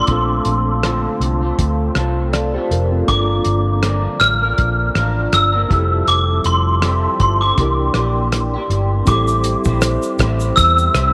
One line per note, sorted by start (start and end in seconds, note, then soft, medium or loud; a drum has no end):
0.00 0.11 A#3 soft
0.00 0.08 D4 soft
0.00 0.10 F4 soft
0.00 1.39 C6 medium
0.06 0.38 A#1 medium
0.06 0.83 A3 medium
0.06 2.29 C4 medium
0.06 0.83 C4 medium
0.06 2.29 D4 medium
0.06 2.30 F4 medium
0.06 kick medium
0.06 closed hi-hat medium
0.11 0.85 F4 medium
0.11 2.31 A4 medium
0.11 0.84 A4 medium
0.45 1.06 A#1 medium
0.45 closed hi-hat medium
0.83 1.41 A#2 medium
0.83 1.42 D3 medium
0.83 1.42 A3 medium
0.83 1.42 C4 medium
0.83 1.41 F4 loud
0.83 1.40 A4 medium
0.83 cross-stick medium
0.83 closed hi-hat medium
1.20 1.51 C2 medium
1.20 closed hi-hat soft
1.41 1.95 C4 soft
1.41 1.96 F4 medium
1.41 1.96 A4 medium
1.45 1.94 A3 soft
1.59 1.89 D2 medium
1.59 kick medium
1.59 closed hi-hat medium
1.95 2.56 C2 medium
1.95 2.54 A3 medium
1.95 2.54 C4 medium
1.95 2.55 F4 medium
1.95 2.53 A4 medium
1.95 cross-stick medium
1.95 closed hi-hat soft
2.33 2.53 A4 soft
2.33 2.53 D5 medium
2.33 cross-stick medium
2.33 closed hi-hat medium
2.54 3.09 C4 medium
2.54 3.10 F4 medium
2.54 2.71 G4 medium
2.54 3.09 A4 medium
2.54 2.70 C5 medium
2.58 3.08 A3 medium
2.71 3.01 F1 medium
2.71 2.90 F4 medium
2.71 2.91 A#4 medium
2.71 closed hi-hat medium
2.91 3.28 C4 medium
2.91 3.08 F4 medium
3.05 3.38 G1 medium
3.05 3.84 F3 medium
3.05 5.66 A#3 medium
3.05 5.67 D4 medium
3.05 5.67 F4 medium
3.05 4.24 D6 loud
3.05 kick medium
3.05 closed hi-hat medium
3.10 3.84 A#3 soft
3.10 3.84 D4 medium
3.10 5.68 A4 medium
3.10 3.84 A#4 medium
3.45 4.06 G1 medium
3.45 closed hi-hat medium
3.83 4.42 G2 medium
3.83 4.42 D3 medium
3.83 4.42 F3 medium
3.83 4.43 A#3 medium
3.83 4.42 D4 medium
3.83 4.41 A#4 medium
3.83 cross-stick medium
3.83 closed hi-hat medium
4.20 4.51 A1 loud
4.20 5.36 F6 loud
4.20 cross-stick medium
4.20 closed hi-hat soft
4.42 4.94 F3 soft
4.42 4.95 A#3 soft
4.42 4.96 D4 soft
4.42 4.96 A#4 medium
4.58 4.89 A#1 medium
4.58 kick medium
4.58 closed hi-hat medium
4.95 5.26 A1 medium
4.95 5.54 F3 medium
4.95 5.54 A#3 medium
4.95 5.53 D4 medium
4.95 5.51 A#4 medium
4.95 cross-stick medium
4.95 closed hi-hat medium
5.33 5.63 G1 medium
5.33 6.11 E6 medium
5.33 cross-stick medium
5.33 closed hi-hat medium
5.52 5.68 F3 soft
5.52 5.70 A#3 soft
5.52 5.71 D4 medium
5.52 5.70 A#4 medium
5.68 6.01 F1 medium
5.68 6.81 F3 medium
5.68 6.82 G3 medium
5.68 7.53 C4 medium
5.68 6.83 C4 medium
5.68 7.54 E4 medium
5.68 6.84 E4 medium
5.68 7.55 G4 medium
5.68 6.84 A4 medium
5.68 kick loud
5.68 closed hi-hat medium
5.73 7.56 A4 medium
6.07 6.38 F1 medium
6.07 6.47 D6 medium
6.07 closed hi-hat medium
6.44 7.05 F1 medium
6.44 7.17 C6 medium
6.44 closed hi-hat medium
6.82 7.41 F3 medium
6.82 7.41 G3 medium
6.82 7.42 C4 medium
6.82 7.42 E4 medium
6.82 7.39 A4 medium
6.82 cross-stick loud
6.82 closed hi-hat medium
7.20 7.50 G1 medium
7.20 7.42 C6 medium
7.20 kick medium
7.20 closed hi-hat soft
7.41 7.59 C4 soft
7.41 7.59 E4 soft
7.41 7.58 A4 medium
7.41 8.50 D6 medium
7.56 7.88 C2 medium
7.56 7.96 C3 medium
7.56 7.93 E3 medium
7.56 7.96 A#3 medium
7.56 9.04 D4 medium
7.56 7.96 D4 medium
7.56 9.05 E4 medium
7.56 9.06 G4 medium
7.56 kick medium
7.56 closed hi-hat medium
7.60 7.97 G4 medium
7.60 9.07 A#4 medium
7.94 8.55 A#1 medium
7.94 8.53 E3 soft
7.94 8.55 A#3 medium
7.94 8.55 D4 medium
7.94 cross-stick medium
7.94 closed hi-hat medium
7.99 8.52 G4 medium
8.32 cross-stick medium
8.32 closed hi-hat medium
8.54 9.07 A#3 medium
8.54 9.08 D4 medium
8.54 9.08 G4 medium
8.70 9.00 G1 medium
8.70 closed hi-hat medium
9.05 9.54 A1 medium
9.05 9.66 G3 medium
9.05 11.13 C4 medium
9.05 9.67 C4 medium
9.05 11.13 E4 medium
9.05 11.13 G4 medium
9.05 10.63 D6 medium
9.05 kick loud
9.05 closed hi-hat medium
9.05 shaker medium
9.10 9.67 E4 medium
9.10 11.13 A4 medium
9.10 9.65 C5 medium
9.28 shaker medium
9.44 closed hi-hat medium
9.44 shaker medium
9.65 9.96 A#1 medium
9.65 10.21 E4 soft
9.65 10.21 C5 soft
9.65 kick medium
9.65 shaker medium
9.69 10.19 G3 soft
9.69 10.20 C4 medium
9.82 cross-stick loud
9.82 closed hi-hat medium
9.82 shaker medium
10.02 shaker medium
10.19 10.50 A1 loud
10.19 10.93 G3 medium
10.19 10.95 C4 medium
10.19 10.96 E4 medium
10.19 kick medium
10.19 cross-stick loud
10.19 closed hi-hat medium
10.19 shaker soft
10.23 10.97 C5 medium
10.40 shaker medium
10.56 10.88 E2 medium
10.56 11.13 E6 medium
10.56 kick medium
10.56 closed hi-hat medium
10.56 shaker medium
10.78 shaker medium
10.94 11.13 C2 medium
10.94 11.13 G3 medium
10.94 11.13 C4 medium
10.94 11.13 E4 medium
10.94 11.13 C5 medium
10.94 cross-stick medium
10.94 closed hi-hat medium
10.94 shaker medium